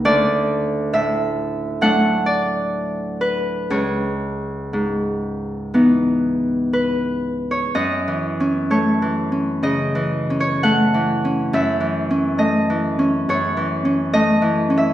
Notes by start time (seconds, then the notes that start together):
Already playing: C#5
0.05 D2 D5
0.93 A2 E5
1.81 F#3 A3 D4 F#5
2.26 D5
3.21 B4
3.70 C#2 C#5
4.73 G#2
5.74 E3 B3 D#4
6.73 B4
7.51 C#5
7.75 F#2 D#5
8.08 E3
8.40 C#4
8.70 A3 C#5
9.02 E3
9.32 C#4
9.63 C#3 D#5
9.95 E3
10.30 C#4
10.40 C#5
10.63 A3 F#5
10.94 E3
11.25 C#4
11.53 F#2 E5
11.80 E3
12.10 C#4
12.38 A3 D#5
12.70 E3
12.99 C#4
13.29 F#2 C#5
13.57 E3
13.85 C#4
14.13 A3 D#5
14.42 E3
14.70 C#4
14.78 E5